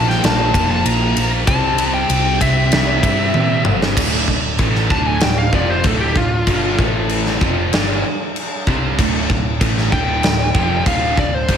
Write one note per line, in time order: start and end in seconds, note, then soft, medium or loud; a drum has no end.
0.00 0.16 A#1 medium
0.00 0.21 A#2 medium
0.00 0.21 A#2 loud
0.00 1.17 A#2 medium
0.00 0.21 F3 loud
0.00 0.22 F3 loud
0.00 0.22 A#3 loud
0.00 1.44 A#3 medium
0.00 1.44 F4 medium
0.00 1.45 C5 medium
0.09 0.24 G5 medium
0.09 snare soft
0.22 0.51 A#1 loud
0.22 0.52 A#2 medium
0.22 0.52 F3 medium
0.22 0.53 A#3 medium
0.22 0.70 A5 loud
0.22 snare loud
0.22 ride medium
0.53 0.82 F1 loud
0.53 0.83 A#2 medium
0.53 0.84 F3 loud
0.53 0.85 A#3 loud
0.53 kick loud
0.53 ride medium
0.71 0.86 A5 medium
0.85 1.13 A#1 loud
0.85 1.14 A#2 medium
0.85 1.15 F3 loud
0.85 1.15 A#3 loud
0.85 1.29 A#5 loud
0.85 ride loud
1.15 1.44 A#1 medium
1.15 1.45 A#2 medium
1.15 1.45 F3 medium
1.15 1.46 A#3 loud
1.15 ride medium
1.47 2.03 C2 medium
1.47 1.77 C3 medium
1.47 1.78 G3 medium
1.47 1.78 C4 loud
1.47 3.95 C4 medium
1.47 3.95 G4 medium
1.47 3.95 D5 medium
1.47 1.91 A5 loud
1.47 kick loud
1.47 ride medium
1.78 2.08 C3 medium
1.78 2.09 G3 medium
1.78 2.09 C4 loud
1.78 ride medium
1.94 2.38 G5 medium
2.09 2.38 C2 medium
2.09 2.39 C3 loud
2.09 2.40 G3 medium
2.09 2.41 C4 loud
2.09 ride loud
2.41 2.69 C2 medium
2.41 2.71 C3 medium
2.41 2.71 G3 loud
2.41 2.72 C4 loud
2.41 3.62 E5 medium
2.41 kick medium
2.41 ride medium
2.72 3.01 C2 medium
2.72 3.03 C3 medium
2.72 3.03 G3 loud
2.72 3.04 C4 medium
2.72 snare loud
2.72 ride loud
3.03 3.31 G2 medium
3.03 3.34 C3 loud
3.03 3.34 G3 loud
3.03 3.35 C4 loud
3.03 kick loud
3.03 ride medium
3.34 3.63 A#2 medium
3.34 3.65 C3 medium
3.34 3.65 G3 medium
3.34 3.66 C4 loud
3.34 high tom medium
3.65 3.94 G1 medium
3.65 3.95 C3 medium
3.65 3.96 G3 medium
3.65 3.96 C4 loud
3.65 mid tom loud
3.82 snare medium
3.97 4.26 D1 medium
3.97 4.27 D2 medium
3.97 4.28 A2 loud
3.97 4.28 D3 medium
3.97 6.76 D4 medium
3.97 7.39 A4 medium
3.97 6.76 E5 medium
3.97 kick loud
3.97 crash loud
3.97 crash medium
4.27 4.57 D1 medium
4.27 4.53 D2 medium
4.27 4.54 A2 medium
4.27 kick medium
4.58 4.88 A1 medium
4.58 4.90 A2 medium
4.58 4.90 E3 medium
4.58 4.91 A3 loud
4.58 kick loud
4.58 crash medium
4.75 snare soft
4.90 5.20 D1 medium
4.90 5.21 D2 medium
4.90 5.21 A2 loud
4.90 5.22 D3 medium
4.90 5.07 A5 medium
4.90 kick loud
5.07 5.22 G#5 medium
5.20 5.52 D1 medium
5.20 5.47 D2 medium
5.20 5.47 A2 medium
5.20 5.38 G5 medium
5.20 snare loud
5.20 crash medium
5.38 5.53 F5 medium
5.52 5.82 F1 loud
5.52 5.84 F2 medium
5.52 5.84 C3 loud
5.52 5.84 F3 loud
5.52 5.69 D5 loud
5.52 kick loud
5.70 5.86 C5 medium
5.84 6.14 D1 loud
5.84 6.15 D2 medium
5.84 6.15 A2 loud
5.84 6.16 D3 loud
5.84 6.00 A4 medium
5.84 kick loud
5.84 crash medium
6.00 6.16 G4 loud
6.15 6.45 D1 medium
6.15 6.42 D2 medium
6.15 6.42 A2 medium
6.15 6.77 F4 medium
6.15 kick medium
6.47 6.76 G1 medium
6.47 6.78 G2 medium
6.47 6.78 D3 loud
6.47 6.78 G3 loud
6.47 kick medium
6.47 crash medium
6.79 7.37 A1 medium
6.79 7.40 A2 medium
6.79 7.41 E3 loud
6.79 7.41 A3 loud
6.79 7.42 A3 medium
6.79 7.42 E4 medium
6.79 kick loud
7.09 crash medium
7.26 snare soft
7.41 7.71 F1 medium
7.41 7.72 F2 medium
7.41 7.72 C3 medium
7.41 7.73 F3 loud
7.41 11.57 D4 medium
7.41 11.57 A4 medium
7.41 11.57 F5 medium
7.41 kick loud
7.73 8.02 G1 medium
7.73 8.03 G2 medium
7.73 8.03 D3 loud
7.73 8.04 G3 loud
7.73 snare loud
7.73 crash medium
8.36 crash medium
8.67 8.96 C2 medium
8.67 8.97 C3 medium
8.67 8.98 G3 loud
8.67 8.98 C4 loud
8.67 kick loud
8.99 9.28 D1 medium
8.99 9.28 D2 loud
8.99 9.29 A2 medium
8.99 9.29 D3 medium
8.99 kick loud
8.99 crash medium
9.29 9.58 D1 medium
9.29 9.55 D2 medium
9.29 9.55 A2 medium
9.29 kick loud
9.61 9.90 A1 loud
9.61 9.91 A2 loud
9.61 9.92 E3 loud
9.61 9.92 A3 loud
9.61 kick loud
9.61 crash medium
9.78 snare soft
9.92 10.21 D1 loud
9.92 10.22 D2 loud
9.92 10.22 A2 loud
9.92 10.23 D3 loud
9.92 10.83 G5 loud
9.92 kick loud
10.23 10.53 D1 medium
10.23 10.48 D2 medium
10.23 10.49 A2 medium
10.23 snare loud
10.23 crash medium
10.54 10.84 F1 loud
10.54 10.85 F2 medium
10.54 10.85 C3 medium
10.54 10.85 F3 loud
10.54 kick loud
10.86 11.15 D1 medium
10.86 11.16 D2 loud
10.86 11.17 A2 loud
10.86 11.17 D3 loud
10.86 11.17 F5 medium
10.86 kick loud
10.86 crash medium
11.17 11.47 D1 medium
11.17 11.43 D2 medium
11.17 11.43 A2 medium
11.17 11.35 D5 loud
11.17 kick medium
11.35 11.57 C5 loud
11.49 11.57 G1 medium
11.49 11.57 G2 medium
11.49 11.57 D3 medium
11.49 11.57 G3 loud
11.49 kick medium
11.49 crash medium